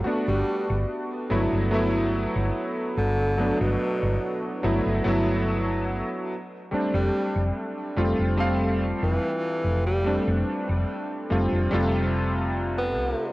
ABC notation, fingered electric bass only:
X:1
M:4/4
L:1/16
Q:1/4=72
K:G
V:1 name="Fingered electric bass" clef=bass
z G,,, z G,,, z2 G,,, G,,,4 G,,, z2 G,,,2- | G,,, G,,, z G,,, z2 G,,, G,,, G,,,4- G,,, z3 | z =F,,, z F,,, z2 F,,, F,,,4 F,,, z2 F,,,2- | =F,,, F,,, z F,,, z2 F,,, F,,, F,,,6 C,, z |]